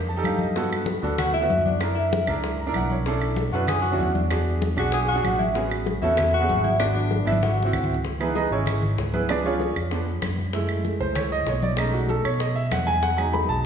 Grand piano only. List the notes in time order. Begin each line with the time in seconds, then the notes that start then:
0.09 A5
0.17 D#4 G4 A4
0.26 F5
0.40 D#5
0.56 B3 F#4 A4
1.02 B3 F#4 A4
1.41 B3 F#4 B4
1.81 D4 E4 A#4
2.27 D4 E4 A#4
2.60 A#5
2.67 D4 E4 A#4
2.76 F#5
2.91 C#5
3.06 C#4 D4 E4 A4
3.53 C#4 D4 E4 B4
3.91 C#4 D4 E4 F#4
4.31 D4 F#4 G#4
4.77 D4 F#4 G#4
5.15 D4 F#4 G#4
5.54 B3 C#4 F#4 G#4
6.02 B3 C#4 F#4 A4
6.40 B3 C#4 F#4 G#4
6.79 B3 D4 F#4
7.25 B3 D4 E4
7.65 C4 E4 F#4
8.20 E3 B3 D#4 E4 G#4 B4
8.36 D#4 G#4 B4 D#5
8.52 C#4 E4 G#4 C#5
9.14 B3 E4 G#4 B4
9.29 F3 B3 D4 G#4 B4 D5
9.45 C#4 F4 G#4 C#5
9.91 F3 B3 D4
10.53 G#3 A3 E4
11.01 C5
11.16 C#5
11.32 D#5
11.48 C#5
11.63 D5
11.78 G#3 A3 C#4 D#4 D#5
11.94 F#4
12.09 A4
12.25 C#5
12.40 D#5
12.56 E5
12.72 F#5
12.87 G#5
13.03 F#5
13.17 F#3 G#3 D#4 G#5
13.33 B5
13.49 A5